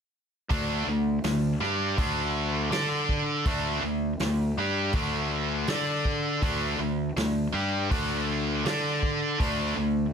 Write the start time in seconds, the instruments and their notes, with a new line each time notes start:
0.50 fingered electric bass D2, distorted electric guitar D3 A3 D4, kick, open hi-hat
0.87 fingered electric bass D2, distorted electric guitar D3 A3
1.24 fingered electric bass D2, distorted electric guitar D3 A3, snare, open hi-hat
1.61 fingered electric bass G2, distorted electric guitar G3 D4 G4, snare
1.97 fingered electric bass D2, distorted electric guitar D3 A3 D4, kick, open hi-hat
2.71 fingered electric bass D3, distorted electric guitar D4 A4 D5, snare, open hi-hat
3.09 kick
3.45 fingered electric bass D2, distorted electric guitar D3 A3 D4, kick, open hi-hat
3.82 fingered electric bass D2, distorted electric guitar D3 A3
4.19 fingered electric bass D2, distorted electric guitar D3 A3, snare, open hi-hat
4.57 fingered electric bass G2, distorted electric guitar G3 D4 G4
4.93 fingered electric bass D2, distorted electric guitar D3 A3 D4, kick, open hi-hat
5.67 fingered electric bass D3, distorted electric guitar D4 A4 D5, snare, open hi-hat
6.05 kick
6.42 fingered electric bass D2, distorted electric guitar D3 A3 D4, kick, open hi-hat
6.79 fingered electric bass D2, distorted electric guitar D3 A3
7.16 fingered electric bass D2, distorted electric guitar D3 A3, snare, open hi-hat
7.53 fingered electric bass G2, distorted electric guitar G3 D4 G4
7.90 fingered electric bass D2, distorted electric guitar D3 A3 D4, kick, open hi-hat
8.65 fingered electric bass D3, distorted electric guitar D4 A4 D5, snare, open hi-hat
9.03 kick
9.39 fingered electric bass D2, distorted electric guitar D3 A3 D4, kick, open hi-hat
9.77 fingered electric bass D2, distorted electric guitar D3 A3